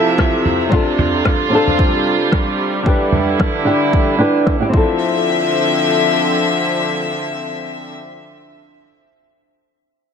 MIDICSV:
0, 0, Header, 1, 4, 480
1, 0, Start_track
1, 0, Tempo, 535714
1, 643, Time_signature, 4, 2, 24, 8
1, 9083, End_track
2, 0, Start_track
2, 0, Title_t, "Nylon-string guitar"
2, 0, Program_c, 0, 24
2, 0, Note_on_c, 0, 60, 89
2, 0, Note_on_c, 0, 64, 82
2, 0, Note_on_c, 0, 65, 84
2, 0, Note_on_c, 0, 69, 92
2, 604, Note_off_c, 0, 60, 0
2, 613, Note_off_c, 0, 64, 0
2, 620, Note_off_c, 0, 65, 0
2, 620, Note_on_c, 0, 60, 86
2, 628, Note_off_c, 0, 69, 0
2, 637, Note_on_c, 0, 62, 78
2, 652, Note_on_c, 0, 65, 80
2, 669, Note_on_c, 0, 69, 90
2, 1325, Note_off_c, 0, 60, 0
2, 1334, Note_off_c, 0, 62, 0
2, 1341, Note_on_c, 0, 60, 73
2, 1342, Note_off_c, 0, 65, 0
2, 1350, Note_off_c, 0, 69, 0
2, 1356, Note_on_c, 0, 62, 65
2, 1372, Note_on_c, 0, 65, 61
2, 1388, Note_on_c, 0, 69, 78
2, 2526, Note_off_c, 0, 60, 0
2, 2527, Note_off_c, 0, 62, 0
2, 2538, Note_on_c, 0, 62, 67
2, 2542, Note_off_c, 0, 65, 0
2, 2548, Note_off_c, 0, 69, 0
2, 2552, Note_on_c, 0, 64, 62
2, 2568, Note_on_c, 0, 67, 62
2, 2579, Note_off_c, 0, 64, 0
2, 2583, Note_on_c, 0, 71, 76
2, 3244, Note_off_c, 0, 62, 0
2, 3260, Note_off_c, 0, 67, 0
2, 3267, Note_off_c, 0, 71, 0
2, 3269, Note_on_c, 0, 62, 73
2, 3275, Note_on_c, 0, 64, 68
2, 3284, Note_on_c, 0, 67, 67
2, 3293, Note_on_c, 0, 71, 74
2, 3730, Note_off_c, 0, 62, 0
2, 3733, Note_off_c, 0, 64, 0
2, 3737, Note_off_c, 0, 67, 0
2, 3742, Note_off_c, 0, 71, 0
2, 3749, Note_on_c, 0, 62, 80
2, 3758, Note_on_c, 0, 64, 68
2, 3765, Note_on_c, 0, 67, 75
2, 3773, Note_on_c, 0, 71, 86
2, 4095, Note_off_c, 0, 62, 0
2, 4100, Note_off_c, 0, 64, 0
2, 4103, Note_off_c, 0, 67, 0
2, 4107, Note_off_c, 0, 71, 0
2, 4120, Note_on_c, 0, 62, 71
2, 4127, Note_on_c, 0, 64, 63
2, 4136, Note_on_c, 0, 67, 62
2, 4143, Note_on_c, 0, 74, 78
2, 4202, Note_off_c, 0, 62, 0
2, 4205, Note_on_c, 0, 60, 69
2, 4218, Note_off_c, 0, 64, 0
2, 4225, Note_off_c, 0, 74, 0
2, 4229, Note_on_c, 0, 64, 59
2, 4244, Note_off_c, 0, 67, 0
2, 4251, Note_on_c, 0, 65, 63
2, 4275, Note_on_c, 0, 69, 75
2, 7053, Note_off_c, 0, 60, 0
2, 7076, Note_off_c, 0, 64, 0
2, 7098, Note_off_c, 0, 65, 0
2, 7122, Note_off_c, 0, 69, 0
2, 9083, End_track
3, 0, Start_track
3, 0, Title_t, "String section"
3, 0, Program_c, 1, 48
3, 0, Note_on_c, 1, 48, 73
3, 0, Note_on_c, 1, 53, 69
3, 0, Note_on_c, 1, 76, 83
3, 627, Note_off_c, 1, 53, 0
3, 627, Note_off_c, 1, 76, 0
3, 645, Note_on_c, 1, 55, 68
3, 646, Note_on_c, 1, 65, 80
3, 2530, Note_off_c, 1, 48, 0
3, 2545, Note_off_c, 1, 65, 0
3, 2563, Note_on_c, 1, 64, 78
3, 2566, Note_on_c, 1, 50, 73
3, 4208, Note_off_c, 1, 55, 0
3, 4227, Note_off_c, 1, 64, 0
3, 4228, Note_off_c, 1, 50, 0
3, 4248, Note_on_c, 1, 76, 76
3, 4249, Note_on_c, 1, 53, 62
3, 4250, Note_on_c, 1, 50, 67
3, 4250, Note_on_c, 1, 60, 63
3, 7095, Note_off_c, 1, 76, 0
3, 7096, Note_off_c, 1, 53, 0
3, 7097, Note_off_c, 1, 50, 0
3, 7097, Note_off_c, 1, 60, 0
3, 9083, End_track
4, 0, Start_track
4, 0, Title_t, "Drums"
4, 63, Note_on_c, 9, 82, 51
4, 153, Note_off_c, 9, 82, 0
4, 164, Note_on_c, 9, 36, 94
4, 169, Note_on_c, 9, 37, 84
4, 180, Note_on_c, 9, 82, 40
4, 254, Note_off_c, 9, 36, 0
4, 259, Note_off_c, 9, 37, 0
4, 270, Note_off_c, 9, 82, 0
4, 405, Note_on_c, 9, 45, 57
4, 413, Note_on_c, 9, 82, 80
4, 495, Note_off_c, 9, 45, 0
4, 503, Note_off_c, 9, 82, 0
4, 538, Note_on_c, 9, 82, 53
4, 628, Note_off_c, 9, 82, 0
4, 644, Note_on_c, 9, 36, 93
4, 648, Note_on_c, 9, 82, 42
4, 733, Note_off_c, 9, 36, 0
4, 737, Note_off_c, 9, 82, 0
4, 882, Note_on_c, 9, 82, 73
4, 883, Note_on_c, 9, 45, 83
4, 972, Note_off_c, 9, 82, 0
4, 973, Note_off_c, 9, 45, 0
4, 1013, Note_on_c, 9, 82, 47
4, 1103, Note_off_c, 9, 82, 0
4, 1123, Note_on_c, 9, 36, 92
4, 1123, Note_on_c, 9, 37, 89
4, 1129, Note_on_c, 9, 82, 45
4, 1213, Note_off_c, 9, 36, 0
4, 1213, Note_off_c, 9, 37, 0
4, 1219, Note_off_c, 9, 82, 0
4, 1364, Note_on_c, 9, 82, 76
4, 1453, Note_off_c, 9, 82, 0
4, 1498, Note_on_c, 9, 45, 57
4, 1499, Note_on_c, 9, 82, 52
4, 1588, Note_off_c, 9, 45, 0
4, 1589, Note_off_c, 9, 82, 0
4, 1604, Note_on_c, 9, 36, 87
4, 1606, Note_on_c, 9, 82, 41
4, 1693, Note_off_c, 9, 36, 0
4, 1696, Note_off_c, 9, 82, 0
4, 1848, Note_on_c, 9, 82, 67
4, 1937, Note_off_c, 9, 82, 0
4, 1977, Note_on_c, 9, 82, 46
4, 2067, Note_off_c, 9, 82, 0
4, 2080, Note_on_c, 9, 37, 79
4, 2084, Note_on_c, 9, 36, 93
4, 2170, Note_off_c, 9, 37, 0
4, 2173, Note_off_c, 9, 36, 0
4, 2327, Note_on_c, 9, 82, 65
4, 2416, Note_off_c, 9, 82, 0
4, 2452, Note_on_c, 9, 82, 53
4, 2541, Note_off_c, 9, 82, 0
4, 2563, Note_on_c, 9, 36, 87
4, 2568, Note_on_c, 9, 82, 44
4, 2653, Note_off_c, 9, 36, 0
4, 2657, Note_off_c, 9, 82, 0
4, 2797, Note_on_c, 9, 45, 67
4, 2805, Note_on_c, 9, 82, 75
4, 2887, Note_off_c, 9, 45, 0
4, 2894, Note_off_c, 9, 82, 0
4, 2929, Note_on_c, 9, 82, 47
4, 3019, Note_off_c, 9, 82, 0
4, 3043, Note_on_c, 9, 36, 88
4, 3051, Note_on_c, 9, 37, 92
4, 3133, Note_off_c, 9, 36, 0
4, 3140, Note_off_c, 9, 37, 0
4, 3281, Note_on_c, 9, 82, 73
4, 3370, Note_off_c, 9, 82, 0
4, 3413, Note_on_c, 9, 82, 48
4, 3502, Note_off_c, 9, 82, 0
4, 3524, Note_on_c, 9, 36, 92
4, 3614, Note_off_c, 9, 36, 0
4, 3766, Note_on_c, 9, 82, 69
4, 3855, Note_off_c, 9, 82, 0
4, 3894, Note_on_c, 9, 82, 51
4, 3984, Note_off_c, 9, 82, 0
4, 4001, Note_on_c, 9, 37, 84
4, 4004, Note_on_c, 9, 36, 90
4, 4090, Note_off_c, 9, 37, 0
4, 4093, Note_off_c, 9, 36, 0
4, 4243, Note_on_c, 9, 36, 99
4, 4333, Note_off_c, 9, 36, 0
4, 9083, End_track
0, 0, End_of_file